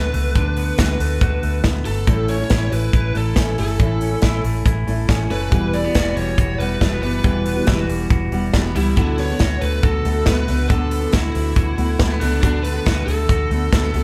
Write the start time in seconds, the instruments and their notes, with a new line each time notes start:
Already playing: fingered electric bass D2, clean electric guitar D3 A3 B3 F#4, lead electric guitar B4
0.13 fingered electric bass C#2, clean electric guitar A3, open hi-hat
0.35 fingered electric bass D2, clean electric guitar D3, kick, closed hi-hat
0.57 clean electric guitar B3, open hi-hat
0.78 fingered electric bass D2, clean electric guitar F#4, kick, snare, closed hi-hat
1.00 fingered electric bass D2, clean electric guitar A3, open hi-hat
1.21 fingered electric bass D2, clean electric guitar F#4, kick, closed hi-hat
1.43 fingered electric bass D2, clean electric guitar A3, open hi-hat
1.64 fingered electric bass D2, clean electric guitar B3, kick, snare, closed hi-hat
1.85 fingered electric bass G1, clean electric guitar A3, lead electric guitar A4, open hi-hat
2.07 fingered electric bass A1, twelve-string acoustic guitar A2 E3 A3 C#4 E4, clean electric guitar A2, kick, closed hi-hat
2.28 clean electric guitar C#4, lead electric guitar C#5, open hi-hat
2.39 twelve-string acoustic guitar A3 C#4 E4
2.50 fingered electric bass A1, clean electric guitar E4, kick, snare, closed hi-hat
2.72 fingered electric bass A1, clean electric guitar A3, lead electric guitar B4, open hi-hat
2.93 fingered electric bass A1, clean electric guitar E4, kick, closed hi-hat
3.14 fingered electric bass A1, twelve-string acoustic guitar E3 A3 C#4 E4, clean electric guitar A3, lead electric guitar A4, open hi-hat
3.36 fingered electric bass A1, twelve-string acoustic guitar E3 A3 C#4 E4, clean electric guitar C#4, kick, snare, closed hi-hat
3.58 fingered electric bass G1, twelve-string acoustic guitar E3 A3 C#4 E4, clean electric guitar A3, lead electric guitar A4, open hi-hat
3.79 fingered electric bass A1, twelve-string acoustic guitar A2 E3 A3 C#4 E4, clean electric guitar A2, kick, closed hi-hat
4.01 clean electric guitar C#4, open hi-hat
4.11 twelve-string acoustic guitar A3 C#4 E4
4.22 fingered electric bass A1, clean electric guitar E4, kick, snare, closed hi-hat
4.44 fingered electric bass A1, clean electric guitar A3, open hi-hat
4.66 fingered electric bass A1, clean electric guitar E4, kick, closed hi-hat
4.87 fingered electric bass A1, twelve-string acoustic guitar E3 A3 C#4 E4, clean electric guitar A3, open hi-hat
5.09 fingered electric bass A1, twelve-string acoustic guitar E3 A3 C#4 E4, clean electric guitar C#4, kick, snare, closed hi-hat
5.30 fingered electric bass F#1, twelve-string acoustic guitar E3 A3 C#4 E4, clean electric guitar A3, lead electric guitar B4, open hi-hat
5.51 fingered electric bass E1, twelve-string acoustic guitar E3 G3 B3 F#4, clean electric guitar E3, kick, closed hi-hat
5.73 clean electric guitar A3, lead electric guitar D5, open hi-hat
5.83 twelve-string acoustic guitar G3 B3 F#4, clean electric guitar B3
5.95 fingered electric bass E1, clean electric guitar F#4, kick, snare, closed hi-hat
6.16 fingered electric bass E1, clean electric guitar G3, lead electric guitar C#5, open hi-hat
6.38 fingered electric bass E1, clean electric guitar F#4, kick, closed hi-hat
6.59 fingered electric bass E1, twelve-string acoustic guitar E3 G3 B3 F#4, clean electric guitar G3, lead electric guitar B4, open hi-hat
6.80 fingered electric bass E1, twelve-string acoustic guitar E3 G3 B3 F#4, clean electric guitar A3, kick, snare, closed hi-hat
6.92 clean electric guitar B3
7.02 fingered electric bass F#1, twelve-string acoustic guitar E3 G3 B3 F#4, clean electric guitar G3, lead electric guitar B4, open hi-hat
7.23 fingered electric bass E1, twelve-string acoustic guitar E3 G3 B3 F#4, clean electric guitar E3, kick, closed hi-hat
7.46 clean electric guitar B3, open hi-hat
7.56 twelve-string acoustic guitar G3 B3 F#4
7.67 fingered electric bass E1, clean electric guitar E4, kick, snare, closed hi-hat
7.78 clean electric guitar F#4
7.89 fingered electric bass E1, clean electric guitar G3, open hi-hat
8.10 fingered electric bass E1, clean electric guitar F#4, kick, closed hi-hat
8.32 fingered electric bass E1, twelve-string acoustic guitar E3 G3 B3 F#4, clean electric guitar G3, open hi-hat
8.53 fingered electric bass E1, twelve-string acoustic guitar E3 G3 B3 F#4, clean electric guitar A3, kick, snare, closed hi-hat
8.64 clean electric guitar B3
8.75 fingered electric bass C#2, twelve-string acoustic guitar E3 G3 B3 F#4, clean electric guitar G3, lead electric guitar E4, open hi-hat
8.97 fingered electric bass D2, clean electric guitar D3, twelve-string acoustic guitar D3 A3 B3 F#4, lead electric guitar E4, kick, closed hi-hat
9.18 clean electric guitar B3, lead electric guitar C#5, open hi-hat
9.30 twelve-string acoustic guitar A3 B3 F#4
9.39 fingered electric bass D2, clean electric guitar F#4, kick, snare, closed hi-hat
9.62 fingered electric bass D2, clean electric guitar A3, lead electric guitar B4, open hi-hat
9.83 fingered electric bass D2, clean electric guitar F#4, lead electric guitar A4, kick, closed hi-hat
10.05 fingered electric bass D2, twelve-string acoustic guitar D3 A3 B3 F#4, clean electric guitar A3, open hi-hat
10.26 fingered electric bass D2, twelve-string acoustic guitar D3 A3 B3 F#4, clean electric guitar B3, lead electric guitar B4, kick, snare, closed hi-hat
10.48 fingered electric bass C#2, twelve-string acoustic guitar D3 A3 B3 F#4, clean electric guitar A3, open hi-hat
10.69 fingered electric bass D2, twelve-string acoustic guitar D3 A3 B3 F#4, clean electric guitar D3, lead electric guitar A4, kick, closed hi-hat
10.91 clean electric guitar B3, open hi-hat
11.01 twelve-string acoustic guitar A3 B3 F#4
11.12 fingered electric bass D2, lead electric guitar E4, clean electric guitar F#4, kick, snare, closed hi-hat
11.35 fingered electric bass D2, clean electric guitar A3, open hi-hat
11.56 fingered electric bass D2, clean electric guitar F#4, kick, closed hi-hat
11.77 fingered electric bass D2, twelve-string acoustic guitar D3 A3 B3 F#4, clean electric guitar A3, open hi-hat
11.99 fingered electric bass D2, twelve-string acoustic guitar D3 A3 B3 F#4, clean electric guitar A3, kick, snare, closed hi-hat
12.10 clean electric guitar B3
12.20 fingered electric bass C#2, twelve-string acoustic guitar D3 A3 B3 F#4, clean electric guitar A3, lead electric guitar D4, open hi-hat
12.42 fingered electric bass D2, twelve-string acoustic guitar D3 A3 B3 F#4, clean electric guitar D3, lead electric guitar D4, kick, closed hi-hat
12.63 clean electric guitar A3, lead electric guitar B4, open hi-hat
12.74 twelve-string acoustic guitar A3 B3 F#4, clean electric guitar B3
12.86 fingered electric bass D2, clean electric guitar F#4, kick, snare, closed hi-hat
13.06 fingered electric bass D2, clean electric guitar A3, lead electric guitar A4, open hi-hat
13.29 fingered electric bass D2, clean electric guitar F#4, kick, closed hi-hat
13.50 fingered electric bass D2, twelve-string acoustic guitar D3 A3 B3 F#4, clean electric guitar A3, open hi-hat
13.72 fingered electric bass D2, twelve-string acoustic guitar D3 A3 B3 F#4, clean electric guitar A3, kick, snare, closed hi-hat
13.84 clean electric guitar B3
13.94 fingered electric bass C#2, twelve-string acoustic guitar D3 A3 B3 F#4, clean electric guitar A3, open hi-hat